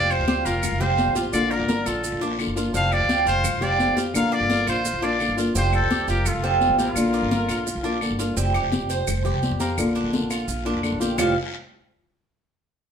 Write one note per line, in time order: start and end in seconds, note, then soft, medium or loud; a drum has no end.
0.00 0.18 F1 loud
0.00 0.26 F3 medium
0.00 0.27 G3 medium
0.00 0.27 C4 medium
0.00 0.28 G4 medium
0.00 0.12 D5 loud
0.00 0.10 F5 medium
0.10 0.47 C5 loud
0.10 0.44 F5 loud
0.10 high conga soft
0.10 claves medium
0.10 maracas soft
0.19 0.44 D2 medium
0.27 0.62 F3 soft
0.27 0.62 G3 soft
0.27 0.62 C4 medium
0.27 0.45 G4 medium
0.27 0.63 G4 medium
0.27 high conga loud
0.27 short guiro medium
0.27 maracas soft
0.44 0.71 F1 loud
0.44 0.80 F4 medium
0.44 0.82 A#4 loud
0.44 0.80 F5 medium
0.44 high conga soft
0.44 short guiro medium
0.44 maracas medium
0.63 muted nylon-string guitar stroke medium
0.63 high conga soft
0.63 low conga medium
0.63 long guiro medium
0.63 claves medium
0.63 maracas medium
0.72 1.05 F1 medium
0.80 0.97 G3 medium
0.80 1.15 C4 medium
0.80 0.98 C4 medium
0.80 0.97 G4 medium
0.80 1.16 C5 loud
0.80 1.15 F5 loud
0.80 high conga soft
0.80 low conga medium
0.80 maracas soft
0.98 1.15 F3 medium
0.98 1.15 G3 medium
0.98 1.15 C4 medium
0.98 1.14 G4 medium
0.98 high conga medium
0.98 short guiro medium
0.98 maracas soft
1.07 1.32 A1 loud
1.15 1.33 G3 medium
1.15 1.33 C4 medium
1.15 1.50 F4 medium
1.15 1.32 G4 medium
1.15 high conga medium
1.15 short guiro medium
1.15 maracas medium
1.33 1.58 A#1 medium
1.33 1.67 D3 medium
1.33 1.67 A#3 medium
1.33 1.68 D4 medium
1.33 1.69 F4 loud
1.33 1.53 D5 loud
1.33 1.52 F5 medium
1.33 high conga soft
1.33 long guiro medium
1.33 claves medium
1.33 maracas medium
1.50 1.88 A#4 medium
1.50 1.86 D5 medium
1.50 1.68 D5 medium
1.50 high conga soft
1.50 maracas soft
1.59 1.85 G1 medium
1.68 2.02 D3 medium
1.68 2.02 A#3 soft
1.68 2.03 D4 medium
1.68 2.03 F4 medium
1.68 1.86 A#4 medium
1.68 high conga loud
1.68 short guiro medium
1.68 maracas soft
1.86 2.11 A#1 medium
1.86 2.20 F4 medium
1.86 2.22 A4 medium
1.86 2.21 D5 medium
1.86 short guiro medium
1.86 claves medium
1.86 maracas medium
2.03 muted nylon-string guitar stroke medium
2.03 high conga soft
2.03 long guiro medium
2.03 maracas medium
2.12 2.46 A#1 medium
2.21 2.38 A#3 medium
2.21 2.56 D4 medium
2.21 2.38 D4 medium
2.21 2.38 F4 medium
2.21 high conga soft
2.21 maracas soft
2.38 2.55 D3 soft
2.38 2.56 A#3 medium
2.38 2.55 D4 medium
2.38 2.54 F4 medium
2.38 high conga soft
2.38 short guiro medium
2.38 claves medium
2.38 maracas soft
2.47 2.73 F#1 medium
2.55 2.74 A#3 medium
2.55 2.73 D4 medium
2.55 2.73 F4 medium
2.55 2.74 F4 medium
2.55 short guiro medium
2.55 maracas medium
2.73 2.99 F1 medium
2.73 3.08 F3 medium
2.73 3.08 G3 medium
2.73 3.08 C4 medium
2.73 3.09 G4 medium
2.73 2.95 F5 loud
2.73 2.93 A5 loud
2.73 high conga soft
2.73 long guiro medium
2.73 maracas medium
2.92 3.27 D5 loud
2.92 3.26 F5 loud
2.92 high conga soft
2.92 claves medium
2.92 maracas soft
3.00 3.25 D2 medium
3.09 3.43 F3 medium
3.09 3.43 G3 medium
3.09 3.43 C4 soft
3.09 3.26 G4 medium
3.09 3.44 G4 medium
3.09 high conga loud
3.09 short guiro medium
3.09 maracas soft
3.26 3.52 F1 loud
3.26 3.61 F4 medium
3.26 3.65 C5 loud
3.26 3.62 F5 loud
3.26 high conga soft
3.26 short guiro medium
3.26 maracas medium
3.44 muted nylon-string guitar stroke medium
3.44 high conga soft
3.44 low conga medium
3.44 long guiro medium
3.44 claves medium
3.44 maracas medium
3.53 3.86 F1 medium
3.61 3.78 G3 medium
3.61 3.96 C4 medium
3.61 3.79 C4 medium
3.61 3.78 G4 medium
3.61 3.98 D5 loud
3.61 3.97 F5 medium
3.61 high conga soft
3.61 low conga medium
3.61 maracas soft
3.79 3.96 F3 medium
3.79 3.96 G3 medium
3.79 3.96 C4 soft
3.79 3.95 G4 medium
3.79 high conga medium
3.79 short guiro medium
3.79 maracas soft
3.88 4.13 F2 loud
3.96 4.14 G3 medium
3.96 4.14 C4 medium
3.96 4.31 F4 medium
3.96 4.14 G4 medium
3.96 high conga medium
3.96 short guiro medium
3.96 maracas medium
4.14 4.39 A#1 medium
4.14 4.48 D3 medium
4.14 4.49 A#3 medium
4.14 4.49 D4 medium
4.14 4.50 F4 medium
4.14 4.35 F5 loud
4.14 4.34 A#5 medium
4.14 long guiro medium
4.14 claves medium
4.14 maracas loud
4.32 4.49 D5 medium
4.32 4.68 D5 loud
4.32 4.67 F5 loud
4.32 high conga soft
4.32 maracas soft
4.40 4.66 G1 medium
4.49 4.83 D3 medium
4.49 4.84 A#3 soft
4.49 4.84 D4 medium
4.49 4.84 F4 medium
4.49 4.67 A#4 medium
4.49 high conga loud
4.49 short guiro medium
4.49 maracas soft
4.67 4.92 A#1 loud
4.67 5.01 F4 medium
4.67 5.06 C5 loud
4.67 5.03 F5 medium
4.67 short guiro medium
4.67 claves medium
4.67 maracas medium
4.85 muted nylon-string guitar stroke medium
4.85 high conga soft
4.85 long guiro medium
4.85 maracas loud
4.93 5.27 A#1 medium
5.02 5.19 A#3 medium
5.02 5.37 D4 medium
5.02 5.20 D4 medium
5.02 5.19 F4 medium
5.02 5.39 D5 loud
5.02 5.38 F5 medium
5.02 high conga soft
5.02 maracas soft
5.20 5.37 D3 medium
5.20 5.37 A#3 soft
5.20 5.37 D4 medium
5.20 high conga soft
5.20 short guiro medium
5.20 claves medium
5.20 maracas soft
5.29 5.54 G1 medium
5.37 5.55 A#3 medium
5.37 5.55 D4 medium
5.37 5.54 F4 medium
5.37 5.55 F4 medium
5.37 short guiro medium
5.37 maracas medium
5.55 5.80 F1 loud
5.55 5.89 F3 medium
5.55 5.90 G3 medium
5.55 5.90 C4 medium
5.55 5.90 G4 medium
5.55 5.73 C5 loud
5.55 5.72 F5 medium
5.55 high conga soft
5.55 long guiro medium
5.55 maracas loud
5.73 6.07 A4 medium
5.73 6.06 C5 medium
5.73 high conga soft
5.73 claves medium
5.73 maracas soft
5.82 6.07 D2 medium
5.90 6.24 F3 medium
5.90 6.25 G3 medium
5.90 6.25 C4 medium
5.90 6.08 G4 medium
5.90 6.25 G4 medium
5.90 high conga loud
5.90 short guiro medium
5.90 maracas soft
6.08 6.33 F1 loud
6.08 6.42 F4 medium
6.08 6.29 G4 medium
6.08 6.28 A#4 medium
6.08 high conga soft
6.08 short guiro medium
6.08 maracas medium
6.26 6.79 F4 medium
6.26 6.78 A4 medium
6.26 muted nylon-string guitar stroke medium
6.26 high conga soft
6.26 low conga medium
6.26 long guiro medium
6.26 claves medium
6.26 maracas medium
6.34 6.68 F1 medium
6.43 6.60 G3 medium
6.43 6.78 C4 loud
6.43 6.60 C4 medium
6.43 6.60 G4 medium
6.43 high conga soft
6.43 maracas soft
6.61 6.78 F3 medium
6.61 6.78 G3 medium
6.61 6.78 C4 medium
6.61 6.77 G4 medium
6.61 high conga medium
6.61 short guiro medium
6.61 maracas soft
6.69 6.95 A1 loud
6.78 6.96 G3 medium
6.78 6.96 C4 medium
6.78 7.13 F4 medium
6.78 7.99 F4 medium
6.78 6.95 G4 medium
6.78 7.98 A#4 medium
6.78 high conga medium
6.78 short guiro medium
6.78 maracas medium
6.96 7.21 A#1 loud
6.96 7.30 D3 medium
6.96 7.31 A#3 medium
6.96 7.31 D4 medium
6.96 7.31 F4 medium
6.96 high conga soft
6.96 long guiro medium
6.96 claves medium
6.96 maracas medium
7.14 7.31 D5 medium
7.14 maracas soft
7.22 7.47 G1 loud
7.31 7.65 D3 soft
7.31 7.65 A#3 medium
7.31 7.66 D4 soft
7.31 7.66 F4 soft
7.31 7.48 A#4 medium
7.31 high conga loud
7.31 short guiro medium
7.31 maracas soft
7.49 7.74 A#1 medium
7.49 7.83 F4 medium
7.49 short guiro medium
7.49 claves medium
7.49 maracas medium
7.66 muted nylon-string guitar stroke medium
7.66 high conga soft
7.66 long guiro medium
7.66 maracas medium
7.75 8.09 A#1 medium
7.83 8.00 A#3 medium
7.83 8.18 D4 medium
7.83 8.01 D4 medium
7.83 8.01 F4 medium
7.83 high conga soft
7.83 maracas soft
8.01 8.18 D3 medium
8.01 8.18 A#3 medium
8.01 8.19 D4 medium
8.01 8.18 F4 medium
8.01 high conga soft
8.01 short guiro medium
8.01 claves medium
8.01 maracas soft
8.11 8.36 G1 medium
8.19 8.37 A#3 medium
8.19 8.36 D4 medium
8.19 8.36 F4 medium
8.19 short guiro medium
8.19 maracas medium
8.36 8.62 F1 loud
8.36 8.70 F3 medium
8.36 8.71 G3 medium
8.36 8.54 C4 medium
8.36 8.72 C4 medium
8.36 8.72 G4 medium
8.36 high conga soft
8.36 long guiro medium
8.36 maracas medium
8.54 8.89 G4 medium
8.54 high conga soft
8.54 claves medium
8.54 maracas soft
8.63 8.80 F1 medium
8.72 9.06 F3 medium
8.72 9.07 G3 soft
8.72 9.07 C4 medium
8.72 9.07 G4 medium
8.72 high conga medium
8.72 short guiro medium
8.72 maracas soft
8.81 9.06 F1 medium
8.90 9.24 C5 medium
8.90 high conga soft
8.90 short guiro medium
8.90 maracas medium
9.07 9.32 F1 loud
9.07 muted nylon-string guitar stroke medium
9.07 high conga soft
9.07 low conga medium
9.07 long guiro medium
9.07 claves medium
9.07 maracas medium
9.24 9.42 G3 medium
9.24 9.42 C4 medium
9.24 9.41 G4 medium
9.24 9.59 G4 medium
9.24 high conga soft
9.24 low conga medium
9.24 maracas soft
9.34 9.50 C2 medium
9.42 9.59 F3 soft
9.42 9.59 G3 medium
9.42 9.59 C4 medium
9.42 9.58 G4 medium
9.42 high conga medium
9.42 short guiro medium
9.42 maracas soft
9.51 9.79 F2 loud
9.59 9.77 G3 medium
9.59 9.94 A#3 medium
9.59 9.77 C4 medium
9.59 9.77 G4 medium
9.59 high conga medium
9.59 short guiro medium
9.59 maracas medium
9.78 10.03 A#1 loud
9.78 10.11 D3 medium
9.78 10.12 A#3 medium
9.78 10.12 D4 loud
9.78 10.13 F4 medium
9.78 long guiro medium
9.78 claves medium
9.78 maracas loud
9.95 10.29 D4 medium
9.95 high conga soft
9.95 maracas soft
10.04 10.21 A#1 medium
10.12 10.46 D3 soft
10.12 10.47 A#3 medium
10.12 10.47 D4 medium
10.12 10.47 F4 medium
10.12 high conga loud
10.12 short guiro medium
10.12 maracas soft
10.22 10.47 A#1 medium
10.30 10.65 F4 medium
10.30 short guiro medium
10.30 claves medium
10.30 maracas medium
10.48 10.73 A#1 loud
10.48 muted nylon-string guitar stroke medium
10.48 high conga soft
10.48 long guiro medium
10.48 maracas medium
10.65 10.82 A#3 medium
10.65 10.82 D4 medium
10.65 11.00 D4 medium
10.65 10.82 F4 medium
10.65 high conga soft
10.65 maracas soft
10.75 10.91 F2 medium
10.82 11.00 D3 medium
10.82 11.00 A#3 medium
10.82 11.00 D4 medium
10.82 10.99 F4 medium
10.82 high conga soft
10.82 short guiro medium
10.82 claves medium
10.82 maracas soft
10.92 11.17 A#1 loud
11.00 11.18 A#3 medium
11.00 11.18 D4 medium
11.00 11.17 F4 medium
11.00 11.18 G4 medium
11.00 high conga medium
11.00 short guiro medium
11.00 maracas medium
11.18 11.35 F1 loud
11.18 11.32 F2 medium
11.18 11.32 A2 medium
11.18 11.33 F3 medium
11.18 11.33 G3 medium
11.18 11.33 C4 medium
11.18 11.35 F4 loud
11.18 11.33 G4 medium
11.18 11.35 C5 medium
11.18 11.35 F5 loud
11.18 low conga loud
11.18 long guiro loud
11.18 claves loud
11.18 maracas medium